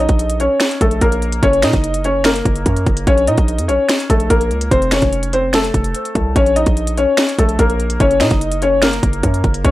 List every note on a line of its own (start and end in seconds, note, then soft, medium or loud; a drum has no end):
0.00 0.38 D#4 medium
0.00 0.37 D#5 medium
0.09 0.49 A#1 loud
0.09 kick medium
0.09 closed hi-hat medium
0.19 closed hi-hat medium
0.30 closed hi-hat medium
0.40 0.79 C#4 medium
0.40 0.79 C#5 medium
0.40 closed hi-hat soft
0.60 finger snap medium
0.60 snare loud
0.60 closed hi-hat medium
0.71 closed hi-hat medium
0.81 1.01 A#1 loud
0.81 1.00 A3 medium
0.81 1.00 A4 medium
0.81 kick medium
0.81 closed hi-hat medium
0.91 closed hi-hat medium
1.01 1.41 A#1 loud
1.01 1.41 A#3 medium
1.01 1.40 A#4 medium
1.01 kick medium
1.01 closed hi-hat medium
1.12 closed hi-hat medium
1.22 closed hi-hat soft
1.32 closed hi-hat medium
1.43 1.65 F#1 loud
1.43 1.62 C#4 medium
1.43 1.61 C#5 loud
1.43 kick loud
1.43 closed hi-hat medium
1.53 closed hi-hat soft
1.62 1.73 A#2 loud
1.62 2.02 D#4 medium
1.62 2.02 D#5 medium
1.62 finger snap medium
1.62 snare loud
1.62 closed hi-hat medium
1.73 2.42 F#1 loud
1.73 kick loud
1.73 closed hi-hat medium
1.84 closed hi-hat medium
1.94 closed hi-hat medium
2.04 2.23 C#4 medium
2.04 2.23 C#5 medium
2.04 closed hi-hat soft
2.24 3.03 A#3 medium
2.24 3.03 A#4 medium
2.24 finger snap medium
2.24 snare loud
2.24 closed hi-hat medium
2.36 closed hi-hat medium
2.45 2.65 F#1 loud
2.45 kick medium
2.45 closed hi-hat medium
2.56 closed hi-hat medium
2.66 2.86 F#2 loud
2.66 kick medium
2.66 closed hi-hat medium
2.77 closed hi-hat medium
2.86 3.06 F#1 loud
2.86 kick medium
2.86 closed hi-hat soft
2.97 closed hi-hat medium
3.07 3.29 A#1 loud
3.07 3.26 C#4 medium
3.07 3.25 C#5 loud
3.07 kick loud
3.07 closed hi-hat medium
3.18 closed hi-hat soft
3.27 3.37 A#2 loud
3.27 3.67 D#4 medium
3.27 3.66 D#5 medium
3.27 closed hi-hat medium
3.38 3.60 A#1 loud
3.38 kick medium
3.38 closed hi-hat medium
3.48 closed hi-hat medium
3.58 3.70 F2 loud
3.58 closed hi-hat medium
3.68 3.78 A#1 loud
3.68 4.07 C#4 medium
3.68 4.07 C#5 medium
3.68 closed hi-hat soft
3.89 finger snap medium
3.89 snare loud
3.89 closed hi-hat medium
4.00 closed hi-hat medium
4.10 4.30 A#1 loud
4.10 4.29 A3 medium
4.10 4.28 A4 medium
4.10 kick medium
4.10 closed hi-hat medium
4.20 closed hi-hat medium
4.30 4.52 A#1 loud
4.30 4.69 A#3 medium
4.30 4.69 A#4 medium
4.30 kick medium
4.30 closed hi-hat medium
4.41 closed hi-hat medium
4.51 4.70 C#2 loud
4.51 closed hi-hat soft
4.61 closed hi-hat medium
4.71 5.01 F1 loud
4.71 4.90 C4 medium
4.71 4.90 C5 loud
4.71 kick loud
4.71 closed hi-hat medium
4.82 closed hi-hat soft
4.91 5.31 C#4 medium
4.91 5.31 C#5 medium
4.91 finger snap medium
4.91 snare loud
4.91 closed hi-hat medium
5.02 5.71 F1 loud
5.02 kick medium
5.02 closed hi-hat medium
5.13 closed hi-hat medium
5.23 closed hi-hat medium
5.33 5.52 C4 medium
5.33 5.52 C5 medium
5.33 closed hi-hat medium
5.33 open hi-hat medium
5.53 6.32 A3 medium
5.53 6.32 A4 medium
5.53 finger snap medium
5.53 snare loud
5.53 closed hi-hat medium
5.64 closed hi-hat medium
5.74 5.94 F1 loud
5.74 kick medium
5.74 closed hi-hat medium
5.84 closed hi-hat medium
5.95 closed hi-hat medium
6.05 closed hi-hat medium
6.15 6.35 C2 loud
6.15 kick medium
6.15 closed hi-hat medium
6.36 6.65 A#1 loud
6.36 6.55 C#4 medium
6.36 6.54 C#5 loud
6.36 kick loud
6.36 closed hi-hat medium
6.46 closed hi-hat soft
6.56 6.95 D#4 medium
6.56 6.95 D#5 medium
6.56 closed hi-hat medium
6.66 7.06 A#1 loud
6.66 kick loud
6.66 closed hi-hat medium
6.77 closed hi-hat medium
6.87 closed hi-hat medium
6.97 7.37 C#4 medium
6.97 7.36 C#5 medium
6.97 closed hi-hat soft
7.17 finger snap medium
7.17 snare loud
7.17 closed hi-hat medium
7.29 closed hi-hat medium
7.39 7.58 A#1 loud
7.39 7.58 A3 medium
7.39 7.57 A4 medium
7.39 kick medium
7.39 closed hi-hat medium
7.49 closed hi-hat medium
7.59 7.99 A#1 loud
7.59 7.98 A#3 medium
7.59 7.98 A#4 medium
7.59 kick medium
7.59 closed hi-hat medium
7.70 closed hi-hat medium
7.80 closed hi-hat soft
7.90 closed hi-hat medium
8.00 8.22 F#1 loud
8.00 8.19 C#4 medium
8.00 8.19 C#5 loud
8.00 kick loud
8.00 closed hi-hat medium
8.11 closed hi-hat soft
8.20 8.30 A#2 loud
8.20 8.60 D#4 medium
8.20 8.60 D#5 medium
8.20 finger snap medium
8.20 snare loud
8.20 closed hi-hat medium
8.31 9.00 F#1 loud
8.31 kick medium
8.31 closed hi-hat medium
8.41 closed hi-hat medium
8.52 closed hi-hat medium
8.62 8.81 C#4 medium
8.62 8.80 C#5 medium
8.62 closed hi-hat soft
8.82 9.61 A#3 medium
8.82 9.61 A#4 medium
8.82 finger snap medium
8.82 snare loud
8.82 closed hi-hat medium
8.93 closed hi-hat medium
9.03 9.23 F#1 loud
9.03 kick medium
9.03 closed hi-hat medium
9.13 closed hi-hat medium
9.23 9.43 F#2 loud
9.23 kick medium
9.23 closed hi-hat medium
9.34 closed hi-hat medium
9.44 9.64 F#1 loud
9.44 kick medium
9.44 closed hi-hat soft
9.54 closed hi-hat medium
9.65 9.71 A#1 loud
9.65 9.71 C#4 medium
9.65 9.71 C#5 loud
9.65 kick loud
9.65 closed hi-hat medium